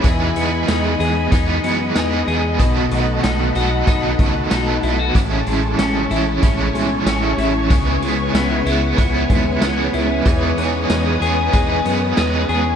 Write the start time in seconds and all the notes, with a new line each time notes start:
Already playing: B3 E4 G#4 G#5 B5
0.03 E2 E3 G#3 B3 D#5, kick, closed hi-hat
0.07 D#4 G#4
0.36 E2 B3, closed hi-hat
0.68 E2 D#4, snare, closed hi-hat, tambourine
1.00 E2 G#4, closed hi-hat
1.31 E2 E3 G#3 B3 D#4 G#4, kick, closed hi-hat
1.64 F#2 B3, closed hi-hat
1.94 E2 G#3 B3 D#4 G#4, snare, closed hi-hat, tambourine
2.27 E2 G#4, closed hi-hat
2.59 B1 B2 D#3 F#3 B3 D#4 A4 F#5 A5 B5, kick, closed hi-hat
2.91 B1 A3, closed hi-hat
3.23 B1 D#4, snare, closed hi-hat, tambourine
3.55 B1 F#3 B3 D#4 F#4 A4, closed hi-hat
3.86 B1 B2 D#3 F#3 B3 D#4 A4, kick, closed hi-hat
4.19 C#2 A3, kick, closed hi-hat
4.50 B1 F#3 B3 D#4, snare, closed hi-hat, tambourine
4.54 A4
4.83 B1 E4, closed hi-hat
4.99 F#4
5.14 A1 A2 E3 G#3 C#4 E4 C#5 G#5 C#6, kick, closed hi-hat
5.46 A1 G#3, closed hi-hat
5.79 A1 C#4, snare, closed hi-hat, tambourine
6.10 A1 C#4 E4, closed hi-hat
6.14 G#3
6.42 A1 A2 E3 G#3 C#4 E4, kick, closed hi-hat
6.74 B1 G#3, closed hi-hat
7.05 A1 E3 G#3 C#4 E4, snare, closed hi-hat, tambourine
7.38 A1 E4, closed hi-hat
7.70 C#2 C#3 G#3 B3 E4 B4, kick, closed hi-hat
8.02 C#2 G#3, closed hi-hat
8.34 C#2 B3, snare, closed hi-hat, tambourine
8.65 C#2 G#3 B3 E4, closed hi-hat
8.97 C#2 C#3 G#3 B3 E4, kick, closed hi-hat
9.30 D#2 G#3, kick, closed hi-hat
9.61 C#2 C#3 G#3 B3 E4, snare, closed hi-hat, tambourine
9.94 C#2 E4, closed hi-hat
10.25 E2 E3 G#3 B3 D#4 G#4 D#6, kick, closed hi-hat
10.58 E2 B3, closed hi-hat
10.90 E2 D#4, snare, closed hi-hat, tambourine
11.20 E2 D#4 G#4, closed hi-hat
11.24 B3
11.52 E2 E3 G#3 B3 D#4 G#4, kick, closed hi-hat
11.85 F#2 B3, closed hi-hat
12.16 E2 G#3 B3 D#4, snare, closed hi-hat, tambourine
12.20 G#4
12.49 E2 G#4, closed hi-hat